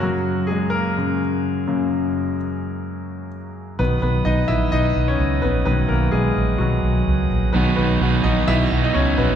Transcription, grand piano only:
X:1
M:4/4
L:1/16
Q:"Swing 16ths" 1/4=128
K:B
V:1 name="Grand piano"
[F,F]4 [G,G]2 [A,A]8- [A,A]2- | [A,A]12 z4 | [B,B]2 [B,B]2 [Dd]2 [Ee]2 [Dd]3 [Cc]3 [B,B]2 | B2 [A,A]2 [G,G]4 [F,F]6 z2 |
B2 [B,B]4 [Dd]2 [Ee]3 [Dd] [Cc]2 [B,B]2 |]
V:2 name="Grand piano" clef=bass
[F,,C,]2 z6 [F,,C,A,]2 z4 [F,,C,A,]2- | [F,,C,A,]4 z12 | [D,F,]16 | [D,F,B,]6 z8 z2 |
[D,F,B,]6 z8 z2 |]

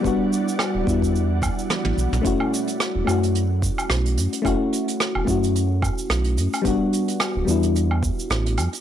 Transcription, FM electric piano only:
X:1
M:4/4
L:1/8
Q:"Swing 16ths" 1/4=109
K:F#phr
V:1 name="FM electric piano"
[G,B,DF]3 [G,B,DE]4- [G,B,DE] | [A,CEF]3 [A,CEF]4- [A,CEF] | [A,CEF]3 [A,CEF]4- [A,CEF] | [G,B,DF]3 [G,B,DE]4 z |]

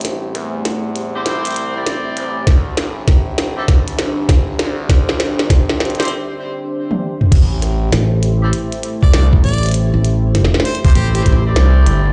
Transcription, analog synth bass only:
X:1
M:4/4
L:1/16
Q:"Swing 16ths" 1/4=99
K:Ddor
V:1 name="Analog synth bass" clef=bass
A,,,2 E,,6 C,,4 z2 A,,,2 | D,,2 A,,,6 G,,,2 G,,,4 D,,2- | D,,2 A,,,6 z8 | A,,,4 z8 C,,2 z2 |
z6 z A,,, z4 C,,2 G,,,2 |]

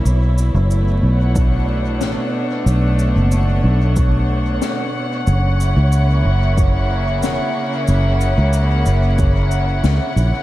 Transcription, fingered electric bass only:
X:1
M:4/4
L:1/16
Q:1/4=92
K:Bm
V:1 name="Fingered electric bass" clef=bass
B,,,3 F,,,3 B,,,6 A,,, z3 | B,,,3 F,,,3 B,,,6 z4 | F,,,3 C,,3 F,,,6 E,,, z3 | F,,,3 C,,3 F,,,6 C,, z ^A,,, z |]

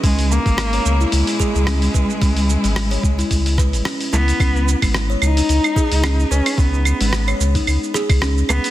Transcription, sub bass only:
X:1
M:4/4
L:1/16
Q:"Swing 16ths" 1/4=110
K:B
V:1 name="Sub bass" clef=bass
C,,3 G,,,3 C,, z C,, z2 C,,3 C,, z | C,,3 G,,,3 C,, z C,,3 G,,, z2 C,, z | C,,3 G,,,3 C,, z C,, z2 C,,3 C,, z | C,,3 G,,,3 C,, z C,, z2 C,,3 C,, z |]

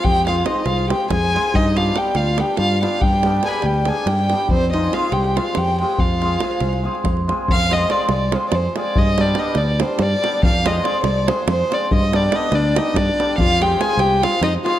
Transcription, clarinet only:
X:1
M:7/8
L:1/16
Q:1/4=142
K:none
V:1 name="Clarinet"
G2 F2 _E2 F2 G2 _A4 | _E2 F2 G2 F2 G2 F2 F2 | G4 _A/2 B/2 A G2 A2 G4 | C2 _E2 F2 G2 F2 G2 G2 |
F8- F2 z4 | z12 z2 | z12 z2 | z12 z2 |
z6 D2 _E2 D4 | F2 G2 _A2 G2 F2 _E2 F2 |]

